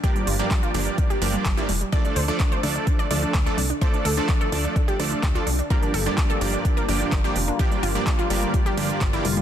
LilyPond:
<<
  \new Staff \with { instrumentName = "Supersaw synth" } { \time 4/4 \key g \minor \tempo 4 = 127 <g, f bes d' g' d''>8. <g, f bes d' g' d''>8. <g, f bes d' g' d''>4 <g, f bes d' g' d''>8. <g, f bes d' g' d''>16 r8 | <f a d' a' d''>8. <f a d' a' d''>8. <f a d' a' d''>4 <f a d' a' d''>8. <f a d' a' d''>16 r8 | <f a d' a' d''>8. <f a d' a' d''>8. <f a d' a' d''>4 <f a d' a' d''>8. <f a d' a' d''>16 r8 | <g, f bes d' g' d''>8. <g, f bes d' g' d''>8. <g, f bes d' g' d''>4 <g, f bes d' g' d''>8. <g, f bes d' g' d''>16 r8 |
<g, f bes d' g' d''>8. <g, f bes d' g' d''>8. <g, f bes d' g' d''>4 <g, f bes d' g' d''>8. <g, f bes d' g' d''>16 r8 | }
  \new Staff \with { instrumentName = "Synth pluck" } { \time 4/4 \key g \minor g'16 g16 f'16 g16 g16 f'16 g16 g16 g16 g'16 g16 g16 g16 e'16 g16 g16 | d''16 d'16 c''16 d'16 d'16 c''16 d'16 d'16 d'16 d''16 d'16 d'16 d'16 a'16 d'16 d'16 | c''16 d'16 a'16 d'16 d'16 a'16 d'16 d'16 d'16 g'16 d'16 d'16 d'16 f'16 d'16 d'16 | bes'16 d'16 a'16 d'16 d'16 a'16 d'16 d'16 d'16 bes'16 d'16 d'16 d'16 g'16 d'16 d'16 |
g'16 g16 f'16 g16 g16 f'16 g16 g16 g16 g'16 g16 g16 g16 e'16 g16 g16 | }
  \new Staff \with { instrumentName = "Supersaw synth" } { \clef bass \time 4/4 \key g \minor r1 | r1 | r1 | <d g bes f'>1~ |
<d g bes f'>1 | }
  \new Staff \with { instrumentName = "Analog synth bass" } { \clef bass \time 4/4 \key g \minor r8 g,,8 r8 g,,8 r8 g,,8 g,,8 f,,8 | r8 d,8 r8 d,8 r8 d,8 d,8 c,8 | r8 d,8 r8 d,8 r8 d,8 d,8 c,8 | r8 g,,8 r8 g,,8 r8 g,,8 g,,8 f,,8 |
r8 g,,8 r8 g,,8 r8 g,,8 g,,8 f,,8 | }
  \new DrumStaff \with { instrumentName = "Drums" } \drummode { \time 4/4 <hh bd>16 hh16 hho16 hh16 <hc hh bd>16 hh16 hho16 hh16 <hh bd>16 hh16 hho16 hh16 <hc hh bd>16 hh16 hho16 hh16 | <hh bd>16 hh16 hho16 hh16 <hc hh bd>16 hh16 hho16 hh16 <hh bd>16 hh16 hho16 hh16 <hc hh bd>16 hh16 hho16 hh16 | <hh bd>16 hh16 hho16 hh16 <hc hh bd>16 hh16 hho16 hh16 <hh bd>16 hh16 hho16 hh16 <hc hh bd>16 hh16 hho16 hh16 | <hh bd>16 hh16 hho16 hh16 <hc hh bd>16 hh16 hho16 hh16 <hh bd>16 hh16 hho16 hh16 <hc hh bd>16 hh16 hho16 hh16 |
<hh bd>16 hh16 hho16 hh16 <hc hh bd>16 hh16 hho16 hh16 <hh bd>16 hh16 hho16 hh16 <hc hh bd>16 hh16 hho16 hh16 | }
>>